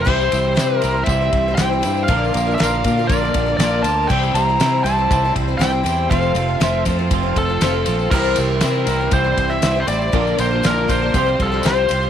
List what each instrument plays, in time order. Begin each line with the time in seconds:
Already playing: tonewheel organ C5
0.02 twelve-string acoustic guitar C3 E3 G3, lead electric guitar C5
0.06 fingered electric bass C2, twelve-string acoustic guitar C4 E4 C5, tonewheel organ G4 E5 C6, kick, crash
0.22 tambourine
0.31 fingered electric bass C2, twelve-string acoustic guitar G3 C4 E4 C5, ride, tambourine
0.44 twelve-string acoustic guitar G3 C4 E4 C5
0.55 twelve-string acoustic guitar C3 E3 G3 C4 E4 C5, fingered electric bass C3, snare, ride
0.59 tambourine
0.77 lead electric guitar A#4
0.82 fingered electric bass C2, twelve-string acoustic guitar G3 C4 E4 C5, ride, tambourine
0.96 twelve-string acoustic guitar G3 C4 E4 C5
1.04 fingered electric bass C2, clean electric guitar C3, lead electric guitar E5, kick, ride
1.08 clean electric guitar E3 G3 C4 E4, tambourine
1.21 twelve-string acoustic guitar G3 C4 E4 C5
1.33 fingered electric bass C2, kick, ride
1.48 twelve-string acoustic guitar G3 C4 E4 C5
1.55 lead electric guitar G5, snare, ride, tambourine
1.59 fingered electric bass C2, twelve-string acoustic guitar C3 E3 G3 C4 E4 C5
1.73 twelve-string acoustic guitar G3 C4 E4 C5
1.82 fingered electric bass G2, twelve-string acoustic guitar G3 C4 E4 C5, ride, tambourine
1.87 clean electric guitar G3
1.97 tambourine
2.04 twelve-string acoustic guitar A#2, lead electric guitar F5
2.08 fingered electric bass A#1, clean electric guitar D3, twelve-string acoustic guitar F3 A#3 D4 F4 A#4, tonewheel organ A#4 D5 F5 D6, kick, ride, tambourine
2.24 tambourine
2.33 fingered electric bass A#1, twelve-string acoustic guitar A#3 D4 F4 A#4, ride
2.37 clean electric guitar A#3, tambourine
2.46 twelve-string acoustic guitar A#3 D4 F4 A#4
2.51 tambourine
2.55 twelve-string acoustic guitar A#2 F3 A#3, lead electric guitar F5
2.59 fingered electric bass A#1, clean electric guitar D3, twelve-string acoustic guitar D4 F4 A#4, snare, ride
2.63 clean electric guitar F4, tambourine
2.75 tambourine
2.84 fingered electric bass A#2, twelve-string acoustic guitar A#3 D4 F4 A#4, kick, ride, tambourine
2.97 twelve-string acoustic guitar A#3 D4 F4 A#4, tambourine
3.07 fingered electric bass A#1, clean electric guitar A#2 D3, lead electric guitar D5, kick, ride
3.12 clean electric guitar A#3 D4 F4, tambourine
3.22 twelve-string acoustic guitar A#3 D4 F4 A#4, tambourine
3.34 fingered electric bass A#1, kick, ride, tambourine
3.46 twelve-string acoustic guitar A#3 D4 F4 A#4
3.57 fingered electric bass A#1, twelve-string acoustic guitar A#2 F3 A#3, clean electric guitar D3, lead electric guitar D5, snare, ride, tambourine
3.61 twelve-string acoustic guitar D4 F4 A#4
3.82 fingered electric bass D2, twelve-string acoustic guitar A#3 D4, clean electric guitar F4, lead electric guitar A5, ride, tambourine
3.88 twelve-string acoustic guitar F4 A#4
4.07 fingered electric bass C2, twelve-string acoustic guitar C3 E3 G3 C4 E4, tonewheel organ G4 C5 E5 C6, lead electric guitar G5, kick, crash
4.12 twelve-string acoustic guitar C5
4.23 tambourine
4.34 fingered electric bass C2, twelve-string acoustic guitar G3 C4 E4 C5, lead electric guitar A#5, ride, tambourine
4.49 twelve-string acoustic guitar G3 C4 E4 C5
4.60 fingered electric bass C3, twelve-string acoustic guitar C3 E3 G3 C4 E4 C5, snare, ride, tambourine
4.84 fingered electric bass C2, twelve-string acoustic guitar G3 C4 E4 C5, lead electric guitar A5, ride, tambourine
4.89 clean electric guitar G3
4.98 twelve-string acoustic guitar G3 C4 E4 C5
5.10 fingered electric bass C2, clean electric guitar C3 E3 G3 C4 E4, kick, ride, tambourine
5.24 twelve-string acoustic guitar G3 C4 E4 C5
5.35 fingered electric bass C2, kick, ride
5.48 twelve-string acoustic guitar G3 C4 E4 C5
5.58 fingered electric bass C2, twelve-string acoustic guitar C3 E3 G3 C4 E4 C5, lead electric guitar G5, snare, ride, tambourine
5.71 twelve-string acoustic guitar G3 C4 E4 C5
5.83 fingered electric bass E2, twelve-string acoustic guitar G3 C4 E4 C5, ride, tambourine
5.88 clean electric guitar G3
5.98 tambourine
6.09 fingered electric bass F1, clean electric guitar F2 C3, twelve-string acoustic guitar F3 A3 C4 F4 C5, tonewheel organ A4 F5, lead electric guitar F5, kick, ride
6.22 tambourine
6.35 fingered electric bass F1, clean electric guitar F3, twelve-string acoustic guitar A3 C4 F4 C5, ride, tambourine
6.48 twelve-string acoustic guitar C4 F4 C5
6.60 fingered electric bass F1, twelve-string acoustic guitar F3 A3 C4 F4 C5, lead electric guitar E5, snare, ride, tambourine
6.85 fingered electric bass F2, clean electric guitar F3, twelve-string acoustic guitar A3 C4 F4, kick, ride, tambourine
6.90 twelve-string acoustic guitar C5
6.99 twelve-string acoustic guitar C4 F4 C5
7.10 fingered electric bass F1, clean electric guitar F2 C3 F3 A3 C4 F4, kick, ride, tambourine
7.23 twelve-string acoustic guitar C4 F4 C5
7.36 fingered electric bass F1, lead electric guitar A4, kick, ride
7.49 twelve-string acoustic guitar C4 F4 C5
7.61 fingered electric bass F1, twelve-string acoustic guitar F3 A3 C4 F4 C5, snare, ride, tambourine
7.74 twelve-string acoustic guitar C4 F4 C5
7.85 fingered electric bass A#1, clean electric guitar F3 F4, twelve-string acoustic guitar A3 C4, ride, tambourine
7.89 twelve-string acoustic guitar F4 C5
7.99 tambourine
8.11 fingered electric bass C2, twelve-string acoustic guitar C3 E3 G3 C4, tonewheel organ G4 E5, lead electric guitar A#4, kick, crash
8.15 twelve-string acoustic guitar E4 C5
8.24 tambourine
8.36 fingered electric bass C2, twelve-string acoustic guitar G3 C4 E4 C5, ride, tambourine
8.49 twelve-string acoustic guitar G3 C4 E4 C5
8.61 fingered electric bass C3, twelve-string acoustic guitar C3 E3 G3 C4 E4, snare, ride, tambourine
8.65 twelve-string acoustic guitar C5
8.87 fingered electric bass C2, twelve-string acoustic guitar G3 C4 E4 C5, ride, tambourine
9.01 twelve-string acoustic guitar G3 C4 E4 C5
9.11 fingered electric bass C2, clean electric guitar C3 E3 G3 C4 E4, lead electric guitar C5, kick, ride, tambourine
9.24 twelve-string acoustic guitar G3 C4 E4 C5
9.37 fingered electric bass C2, kick, ride
9.50 twelve-string acoustic guitar G3 C4 E4 C5, lead electric guitar E5
9.62 fingered electric bass C2, twelve-string acoustic guitar C3 E3 G3 C4 E4 C5, snare, ride, tambourine
9.75 twelve-string acoustic guitar G3 C4 E4 C5
9.80 lead electric guitar C5
9.87 fingered electric bass A1, twelve-string acoustic guitar G3 C4 E4 C5, lead electric guitar D5, ride, tambourine
9.91 clean electric guitar G3
10.02 tambourine
10.12 fingered electric bass A#1, twelve-string acoustic guitar A#2 F3 A#3 D4 F4 A#4, clean electric guitar D3, tonewheel organ A#4 D5 F5 D6, kick, ride
10.27 tambourine
10.38 fingered electric bass A#1, twelve-string acoustic guitar A#3 D4 F4 A#4, lead electric guitar C5, ride, tambourine
10.51 twelve-string acoustic guitar A#3 D4 F4 A#4
10.63 fingered electric bass A#1, twelve-string acoustic guitar A#2 F3 A#3 D4 F4 A#4, clean electric guitar D3, lead electric guitar A#4, snare, ride, tambourine
10.78 tambourine
10.88 fingered electric bass A#1, twelve-string acoustic guitar A#3 D4 F4 A#4, lead electric guitar C5, kick, ride, tambourine
11.02 twelve-string acoustic guitar A#3 D4 F4 A#4
11.14 fingered electric bass C2, twelve-string acoustic guitar C3 F3 G3 C4 G4 C5, clean electric guitar F4, tonewheel organ G4 C5 C6, kick, ride, tambourine
11.26 twelve-string acoustic guitar G3 C4 G4 C5, tambourine
11.40 fingered electric bass C2, lead electric guitar A4, kick, ride
11.52 twelve-string acoustic guitar G3 C4 G4 C5
11.63 fingered electric bass C2, twelve-string acoustic guitar C3 F3 G3 C4 G4 C5, clean electric guitar F4, snare, ride, tambourine
11.67 lead electric guitar C5
11.76 tambourine
11.88 fingered electric bass C2, twelve-string acoustic guitar G3 C4 G4 C5, clean electric guitar F4, ride, tambourine
11.94 clean electric guitar G3
12.03 tambourine